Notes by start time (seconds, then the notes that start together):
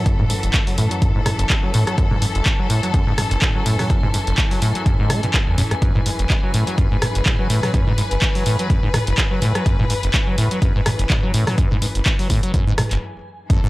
Already playing: F#2 E3 A4 F#5
0.06 F#2, kick, closed hi-hat
0.11 G#5
0.19 G#2, mid tom
0.30 G#2, open hi-hat
0.43 F#1, closed hi-hat
0.54 kick, clap, closed hi-hat
0.67 F#3, open hi-hat
0.78 A2, open hi-hat
0.91 F#3, closed hi-hat
1.02 F#2, kick, closed hi-hat, mid tom
1.15 G#2
1.26 G#2, cross-stick, mid tom, open hi-hat
1.39 F#1, closed hi-hat
1.50 kick, clap, closed hi-hat
1.63 F#3
1.74 A2, mid tom, open hi-hat
1.87 F#3, cross-stick, closed hi-hat
1.98 F#2, kick, closed hi-hat
2.11 G#2, mid tom
2.22 G#2, open hi-hat
2.35 F#1, closed hi-hat
2.46 kick, clap, closed hi-hat
2.59 F#3
2.70 A2, open hi-hat
2.83 F#3, closed hi-hat
2.94 F#2, kick, closed hi-hat
3.07 G#2
3.18 G#2, cross-stick, mid tom, open hi-hat
3.31 F#1, closed hi-hat
3.42 kick, clap, closed hi-hat, mid tom
3.55 F#3
3.66 A2, open hi-hat
3.79 F#3, cross-stick, mid tom, open hi-hat
3.90 F#2, kick, closed hi-hat
4.03 G#2, mid tom
4.14 G#2, open hi-hat
4.27 F#1, closed hi-hat
4.38 kick, clap, closed hi-hat
4.51 F#3, open hi-hat
4.62 A2, open hi-hat
4.75 F#3, closed hi-hat
4.86 F#2, kick, closed hi-hat, mid tom
4.99 G#2
5.10 A3, cross-stick, mid tom, open hi-hat
5.23 B2, closed hi-hat
5.34 kick, clap, closed hi-hat
5.47 E2
5.58 F#2, mid tom, open hi-hat
5.71 G#2, cross-stick, closed hi-hat
5.82 F#2 B4, kick, closed hi-hat
5.95 G#2, mid tom
6.06 G#2, open hi-hat
6.19 F#1, closed hi-hat
6.30 kick, clap, closed hi-hat
6.43 F#3
6.54 A2, open hi-hat
6.67 F#3, closed hi-hat
6.78 F#2, kick, closed hi-hat
6.91 G#2
7.02 G#2, cross-stick, mid tom, open hi-hat
7.15 F#1, closed hi-hat
7.26 kick, clap, closed hi-hat, mid tom
7.39 F#3
7.50 A2, open hi-hat
7.63 F#3, cross-stick, mid tom, open hi-hat
7.74 F#2, kick, closed hi-hat
7.87 G#2, mid tom
7.98 G#2, open hi-hat
8.11 F#1, closed hi-hat
8.22 kick, clap, closed hi-hat
8.35 F#3, open hi-hat
8.46 A2, open hi-hat
8.59 F#3, closed hi-hat
8.70 F#2, kick, closed hi-hat, mid tom
8.83 G#2
8.94 G#2, cross-stick, mid tom, open hi-hat
9.07 F#1, closed hi-hat
9.18 kick, clap, closed hi-hat
9.31 F#3
9.42 A2, mid tom, open hi-hat
9.55 F#3, cross-stick, closed hi-hat
9.66 F#2, kick, closed hi-hat
9.79 G#2, mid tom
9.90 G#2, open hi-hat
10.03 F#1, closed hi-hat
10.14 kick, clap, closed hi-hat
10.27 F#3
10.38 A2, open hi-hat
10.51 F#3, closed hi-hat
10.62 F#2, kick, closed hi-hat
10.75 G#2
10.86 G#2, cross-stick, mid tom, open hi-hat
10.99 F#1, closed hi-hat
11.10 kick, clap, closed hi-hat, mid tom
11.23 F#3
11.34 A2, open hi-hat
11.47 F#3, cross-stick, mid tom, open hi-hat
11.58 F#2, kick, closed hi-hat
11.71 G#2, mid tom
11.82 G#2, open hi-hat
11.95 F#1, closed hi-hat
12.06 kick, clap, closed hi-hat
12.19 F#3, open hi-hat
12.30 A2, kick, open hi-hat
12.43 F#3, closed hi-hat
12.54 F#2, kick, closed hi-hat, mid tom
12.67 G#2
12.78 G#2, cross-stick, mid tom, open hi-hat
12.91 F#1, clap, closed hi-hat
13.50 F#2 E3 A4, kick, closed hi-hat
13.63 G#2